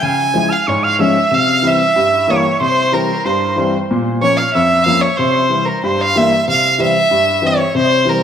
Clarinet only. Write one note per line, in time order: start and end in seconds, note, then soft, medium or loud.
0.00 0.10 G#5 medium
0.09 0.17 G5 medium
0.16 0.52 G#5 medium
0.50 0.69 F6 medium
0.67 0.85 C#6 medium
0.84 1.01 F6 medium
1.00 1.32 E6 medium
1.31 1.63 F6 medium
1.63 1.74 F6 medium
1.74 2.27 E6 medium
2.27 2.58 C#6 medium
2.59 2.94 C6 medium
2.93 3.26 A#5 medium
3.25 3.73 C6 medium
4.21 4.40 C#6 medium
4.38 4.56 F6 medium
4.54 5.04 E6 medium
5.02 5.18 C#6 medium
5.20 5.70 C6 medium
5.68 5.83 A#5 medium
5.84 6.28 C6 medium